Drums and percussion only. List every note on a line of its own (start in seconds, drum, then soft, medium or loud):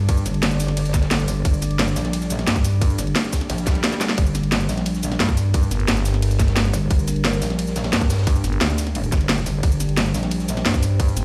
0.08 kick loud
0.08 closed hi-hat medium
0.08 ride medium
0.17 cabasa soft
0.25 snare soft
0.25 closed hi-hat medium
0.25 ride medium
0.25 cabasa medium
0.34 closed hi-hat soft
0.42 snare loud
0.42 closed hi-hat medium
0.42 closed hi-hat loud
0.42 ride medium
0.51 closed hi-hat soft
0.51 cabasa soft
0.59 snare soft
0.59 closed hi-hat medium
0.59 open hi-hat medium
0.59 ride medium
0.59 cabasa medium
0.68 snare soft
0.68 closed hi-hat soft
0.77 closed hi-hat medium
0.77 open hi-hat medium
0.77 ride medium
0.86 closed hi-hat soft
0.86 cabasa soft
0.94 kick loud
0.94 snare soft
0.94 closed hi-hat medium
0.94 ride medium
0.94 cabasa medium
1.02 snare medium
1.02 closed hi-hat soft
1.11 snare loud
1.11 closed hi-hat medium
1.11 ride medium
1.20 cabasa soft
1.28 closed hi-hat medium
1.28 open hi-hat medium
1.28 ride medium
1.28 cabasa medium
1.45 kick loud
1.45 closed hi-hat medium
1.45 closed hi-hat loud
1.45 ride medium
1.54 cabasa soft
1.62 snare soft
1.62 closed hi-hat medium
1.62 ride medium
1.62 cabasa medium
1.71 closed hi-hat soft
1.79 snare loud
1.79 closed hi-hat loud
1.79 closed hi-hat medium
1.79 ride medium
1.88 cabasa soft
1.96 snare medium
1.96 closed hi-hat medium
1.96 open hi-hat medium
1.96 ride medium
1.96 cabasa medium
2.04 snare medium
2.04 snare soft
2.04 closed hi-hat soft
2.13 closed hi-hat loud
2.13 ride medium
2.21 snare soft
2.21 cabasa soft
2.30 snare soft
2.30 closed hi-hat medium
2.30 ride medium
2.30 cabasa medium
2.39 snare soft
2.39 closed hi-hat soft
2.47 snare loud
2.47 closed hi-hat medium
2.47 ride medium
2.56 kick loud
2.56 cabasa soft
2.64 open hi-hat medium
2.64 ride medium
2.64 cabasa medium
2.81 kick loud
2.81 closed hi-hat medium
2.81 closed hi-hat loud
2.81 ride medium
2.90 cabasa soft
2.99 snare soft
2.99 closed hi-hat medium
2.99 ride medium
2.99 cabasa medium
3.07 closed hi-hat soft
3.15 snare loud
3.15 closed hi-hat loud
3.15 ride medium
3.24 closed hi-hat soft
3.24 cabasa soft
3.33 kick medium
3.33 snare loud
3.33 closed hi-hat medium
3.33 open hi-hat medium
3.33 ride medium
3.33 cabasa medium
3.41 snare soft
3.41 closed hi-hat soft
3.49 snare loud
3.49 closed hi-hat medium
3.49 closed hi-hat loud
3.49 ride medium
3.58 closed hi-hat soft
3.58 cabasa soft
3.66 kick loud
3.66 snare loud
3.66 snare soft
3.66 closed hi-hat medium
3.66 ride medium
3.66 cabasa medium
3.75 closed hi-hat soft
3.83 snare loud
3.83 closed hi-hat medium
3.83 closed hi-hat loud
3.83 ride medium
3.92 snare medium
3.92 cabasa soft
4.00 snare loud
4.00 snare medium
4.00 closed hi-hat medium
4.00 open hi-hat medium
4.00 ride medium
4.00 cabasa medium
4.09 snare medium
4.17 kick loud
4.17 closed hi-hat medium
4.17 closed hi-hat loud
4.17 ride medium
4.26 cabasa soft
4.35 snare soft
4.35 closed hi-hat medium
4.35 ride medium
4.35 cabasa medium
4.43 closed hi-hat soft
4.52 snare loud
4.52 closed hi-hat loud
4.52 closed hi-hat medium
4.52 ride medium
4.60 cabasa soft
4.69 snare soft
4.69 closed hi-hat medium
4.69 open hi-hat medium
4.69 ride medium
4.69 cabasa medium
4.78 snare soft
4.78 closed hi-hat soft
4.86 closed hi-hat loud
4.86 ride medium
4.95 snare soft
4.95 cabasa soft
5.03 snare soft
5.03 closed hi-hat medium
5.03 ride soft
5.03 cabasa medium
5.11 snare soft
5.11 snare medium
5.11 closed hi-hat soft
5.19 snare loud
5.19 closed hi-hat medium
5.19 closed hi-hat loud
5.19 ride medium
5.29 kick loud
5.29 cabasa soft
5.37 closed hi-hat medium
5.37 open hi-hat medium
5.37 ride medium
5.37 cabasa medium
5.54 kick loud
5.54 closed hi-hat medium
5.54 closed hi-hat loud
5.54 ride medium
5.63 cabasa soft
5.71 snare soft
5.71 closed hi-hat medium
5.71 ride medium
5.71 cabasa medium
5.80 closed hi-hat soft
5.87 snare loud
5.87 closed hi-hat medium
5.87 closed hi-hat loud
5.87 ride medium
5.97 closed hi-hat soft
5.97 cabasa soft
6.05 snare soft
6.05 closed hi-hat medium
6.05 open hi-hat medium
6.05 ride soft
6.05 cabasa medium
6.14 snare soft
6.14 closed hi-hat soft
6.22 closed hi-hat loud
6.22 open hi-hat medium
6.22 ride medium
6.31 closed hi-hat soft
6.31 cabasa soft
6.39 kick loud
6.39 snare soft
6.39 closed hi-hat medium
6.39 ride medium
6.39 cabasa medium
6.48 snare medium
6.48 closed hi-hat soft
6.55 snare loud
6.55 closed hi-hat medium
6.55 closed hi-hat loud
6.55 ride medium
6.65 cabasa soft
6.73 closed hi-hat medium
6.73 open hi-hat medium
6.73 ride medium
6.73 cabasa medium
6.90 kick loud
6.90 closed hi-hat medium
6.90 ride medium
6.99 cabasa soft
7.08 snare soft
7.08 closed hi-hat medium
7.08 ride medium
7.08 cabasa medium
7.16 closed hi-hat soft
7.24 snare loud
7.24 closed hi-hat medium
7.24 ride medium
7.33 cabasa soft
7.42 snare medium
7.42 closed hi-hat medium
7.42 open hi-hat medium
7.42 ride medium
7.42 cabasa medium
7.50 snare medium
7.50 snare soft
7.50 closed hi-hat soft
7.59 closed hi-hat medium
7.59 ride medium
7.67 snare soft
7.67 cabasa soft
7.76 snare loud
7.76 closed hi-hat medium
7.76 ride medium
7.76 cabasa medium
7.84 snare loud
7.84 snare soft
7.84 closed hi-hat medium
7.84 closed hi-hat soft
7.93 snare loud
7.93 closed hi-hat medium
7.93 ride medium
8.01 kick loud
8.01 cabasa soft
8.10 snare medium
8.10 closed hi-hat medium
8.10 open hi-hat medium
8.10 ride medium
8.10 cabasa medium
8.14 snare medium
8.14 closed hi-hat medium
8.18 snare medium
8.18 closed hi-hat medium
8.22 snare medium
8.22 closed hi-hat medium
8.27 kick loud
8.27 closed hi-hat medium
8.27 ride medium
8.36 cabasa soft
8.44 snare soft
8.44 closed hi-hat medium
8.44 ride medium
8.44 cabasa medium
8.53 closed hi-hat soft
8.61 snare loud
8.61 closed hi-hat medium
8.61 ride medium
8.70 closed hi-hat soft
8.70 cabasa soft
8.78 snare soft
8.78 closed hi-hat medium
8.78 open hi-hat medium
8.78 ride medium
8.78 cabasa medium
8.87 snare soft
8.87 closed hi-hat soft
8.95 closed hi-hat medium
8.95 ride medium
9.04 closed hi-hat soft
9.04 cabasa soft
9.12 kick loud
9.12 snare soft
9.12 closed hi-hat medium
9.12 ride medium
9.12 cabasa medium
9.21 closed hi-hat soft
9.29 snare loud
9.29 closed hi-hat medium
9.29 ride medium
9.38 cabasa soft
9.46 closed hi-hat medium
9.46 open hi-hat medium
9.46 ride medium
9.46 cabasa medium
9.63 kick loud
9.63 closed hi-hat medium
9.63 ride medium
9.72 cabasa soft
9.80 snare soft
9.80 closed hi-hat medium
9.80 ride medium
9.80 cabasa medium
9.89 closed hi-hat soft
9.97 snare loud
9.97 closed hi-hat medium
9.97 ride medium
10.06 cabasa soft
10.14 snare soft
10.14 closed hi-hat medium
10.14 open hi-hat medium
10.14 ride medium
10.14 cabasa medium
10.23 snare medium
10.23 snare soft
10.23 closed hi-hat soft
10.31 closed hi-hat medium
10.31 ride medium
10.40 snare soft
10.40 cabasa soft
10.48 snare soft
10.48 closed hi-hat medium
10.48 ride medium
10.48 cabasa medium
10.57 snare soft
10.57 closed hi-hat soft
10.66 snare loud
10.66 closed hi-hat medium
10.66 ride medium
10.74 kick loud
10.74 cabasa soft
10.82 closed hi-hat medium
10.82 open hi-hat medium
10.82 ride medium
10.82 cabasa medium
11.00 kick loud
11.00 closed hi-hat loud
11.00 closed hi-hat medium
11.00 ride medium
11.08 cabasa soft
11.17 snare soft
11.17 closed hi-hat medium
11.17 ride medium
11.17 cabasa medium